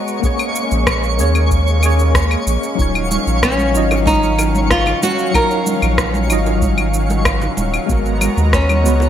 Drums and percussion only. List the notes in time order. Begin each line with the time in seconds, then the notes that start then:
0.08 cabasa
0.23 kick, cabasa
0.39 cabasa, claves
0.55 cabasa
0.71 cabasa
0.87 kick, cross-stick, cabasa, claves
1.03 cabasa
1.19 cabasa
1.35 cabasa, claves
1.51 kick, cabasa
1.67 cabasa
1.83 cabasa, claves
1.99 cabasa
2.15 kick, cross-stick, cabasa
2.31 cabasa, claves
2.47 cabasa
2.63 cabasa
2.79 kick, cabasa
2.95 cabasa, claves
3.11 high conga, cabasa
3.27 cabasa
3.43 kick, cross-stick, cabasa, claves
3.58 high conga, cabasa
3.75 cabasa
3.91 high bongo, cabasa, claves
4.06 kick, high conga, cabasa
4.23 cabasa
4.39 high bongo, cabasa, claves
4.55 high conga, cabasa
4.70 kick, cross-stick, cabasa
4.86 low conga, cabasa, claves
5.03 high conga, cabasa
5.19 cabasa
5.34 kick, cabasa, claves
5.51 cabasa
5.66 high conga, cabasa
5.82 cabasa, claves
5.98 kick, cross-stick, cabasa
6.14 high conga, cabasa
6.30 cabasa, claves
6.46 high bongo, cabasa
6.62 kick, high conga, cabasa
6.78 cabasa, claves
6.94 cabasa
7.10 high bongo, high conga, cabasa
7.25 kick, cross-stick, cabasa, claves
7.42 low conga, cabasa
7.57 high conga, cabasa
7.74 cabasa, claves
7.89 kick, cabasa
8.06 cabasa
8.21 high conga, cabasa, claves
8.37 cabasa
8.53 kick, cross-stick, cabasa
8.69 high conga, cabasa, claves
8.86 cabasa
9.00 high bongo, cabasa